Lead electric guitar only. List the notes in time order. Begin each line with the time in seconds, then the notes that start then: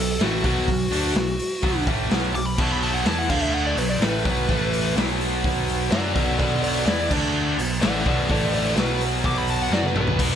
0.00 A4
0.23 F#4
0.46 F#4
2.35 D6
2.46 B5
2.60 A5
2.71 B5
2.83 A5
2.94 F#5
3.07 A5
3.18 F#5
3.30 F5
3.42 E5
3.54 F#5
3.67 D5
3.78 B4
3.90 D5
4.03 B4
5.91 D5 F#5
6.14 D5 F#5
6.39 A4 D5
6.62 A4 D5
6.86 D5
7.82 D5 F#5
8.07 D5 F#5
8.31 A4 D5
8.54 A4 D5
8.77 B4
9.26 D6
9.38 B5
9.50 A5
9.62 F#5
9.74 D5
9.87 B4
9.97 B4